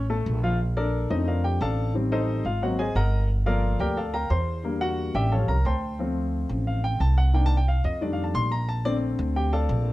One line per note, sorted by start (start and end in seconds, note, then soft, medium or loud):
0.00 0.23 A1 loud
0.10 0.37 A3 medium
0.10 0.37 A4 medium
0.10 0.38 A5 medium
0.26 1.05 A#1 loud
0.43 0.57 F3 medium
0.43 0.57 F4 medium
0.43 0.57 F5 medium
0.77 1.08 D4 medium
0.77 1.08 A4 medium
0.77 1.08 A#4 medium
0.77 1.08 D5 loud
1.10 1.57 F2 medium
1.10 1.90 D3 medium
1.10 1.90 A3 medium
1.10 1.91 C4 medium
1.10 1.27 D#4 medium
1.10 1.27 D#5 medium
1.28 1.44 F4 medium
1.28 1.44 A#4 medium
1.28 1.44 D5 medium
1.28 1.44 F5 medium
1.44 1.61 G4 medium
1.44 1.61 G5 medium
1.61 2.39 A1 medium
1.61 1.93 A4 medium
1.61 1.93 D5 medium
1.61 1.93 F5 medium
1.61 1.93 A5 medium
1.94 2.42 D#3 medium
1.94 2.43 G3 soft
1.94 2.43 C4 medium
2.12 2.43 D#4 medium
2.12 2.43 A4 medium
2.12 2.43 C5 medium
2.12 2.43 D#5 medium
2.45 2.92 G#1 medium
2.45 2.62 F4 medium
2.45 2.62 F5 medium
2.62 2.84 F#3 soft
2.62 2.85 A#3 soft
2.62 2.85 C4 medium
2.62 2.79 F#4 medium
2.62 2.78 C5 medium
2.62 2.78 D#5 medium
2.62 2.79 F#5 medium
2.79 2.95 G#4 medium
2.79 2.95 C5 medium
2.79 2.95 D#5 medium
2.79 2.95 G#5 medium
2.95 3.74 G1 medium
2.95 3.27 A#4 medium
2.95 3.27 D#5 medium
2.95 3.27 F#5 medium
2.95 3.27 A#5 loud
3.46 3.94 F3 medium
3.46 3.95 A#3 medium
3.46 3.78 F4 medium
3.46 3.94 A4 medium
3.46 3.78 A#4 medium
3.46 3.78 D5 medium
3.46 3.78 F5 medium
3.79 4.27 D2 medium
3.79 3.97 G4 medium
3.79 3.97 A#4 medium
3.79 3.96 D5 medium
3.79 3.96 G5 medium
3.97 4.14 A4 medium
3.97 4.13 D5 medium
3.97 4.13 F5 medium
3.97 4.13 A5 medium
4.14 4.30 A#4 medium
4.14 4.30 F5 medium
4.14 4.30 G5 medium
4.14 4.30 A#5 medium
4.30 5.09 E2 medium
4.30 4.62 C5 medium
4.30 4.62 C6 medium
4.63 5.28 D3 medium
4.63 5.28 G3 soft
4.63 5.28 A#3 medium
4.81 5.13 F#4 medium
4.81 5.12 F#5 medium
5.14 5.46 A1 medium
5.14 5.31 G4 medium
5.14 5.31 D5 medium
5.14 5.31 E5 medium
5.14 5.31 G5 medium
5.31 5.54 F3 soft
5.31 5.54 G3 soft
5.31 5.54 C#4 medium
5.31 5.48 A4 medium
5.31 5.48 C#5 medium
5.31 5.48 F5 medium
5.31 5.48 A5 medium
5.48 5.64 C2 medium
5.48 5.65 A#4 medium
5.48 5.65 A#5 medium
5.65 6.44 D2 medium
5.65 5.97 C5 medium
5.65 5.97 G5 medium
5.65 5.97 A5 medium
5.65 5.97 C6 medium
5.99 7.30 F3 medium
5.99 7.30 A3 medium
5.99 7.30 C4 medium
6.49 6.96 A1 medium
6.67 6.83 F5 medium
6.84 7.00 G5 medium
7.00 7.79 C2 medium
7.00 7.17 A5 medium
7.18 7.34 F#5 medium
7.33 7.56 D#3 medium
7.33 7.56 A#3 medium
7.33 7.57 D4 medium
7.33 7.45 G5 medium
7.46 7.56 A5 loud
7.57 7.68 G5 medium
7.68 7.84 F5 medium
7.84 8.31 F2 loud
7.84 8.01 D#5 medium
8.01 8.49 D#3 medium
8.01 8.49 G3 soft
8.01 8.49 A3 soft
8.01 8.50 D4 medium
8.01 8.12 D5 medium
8.13 8.24 F5 medium
8.24 8.35 A5 medium
8.34 9.13 A#1 medium
8.34 8.51 C6 loud
8.52 8.68 A#5 medium
8.69 8.85 A5 medium
8.85 9.93 D3 medium
8.85 9.93 A3 medium
8.85 9.93 C4 medium
8.85 8.95 D5 loud
9.19 9.66 D2 loud
9.36 9.52 G4 medium
9.36 9.52 G5 medium
9.53 9.93 A4 medium
9.53 9.93 D5 medium
9.53 9.93 F5 medium
9.53 9.93 A5 medium
9.69 9.93 A#1 loud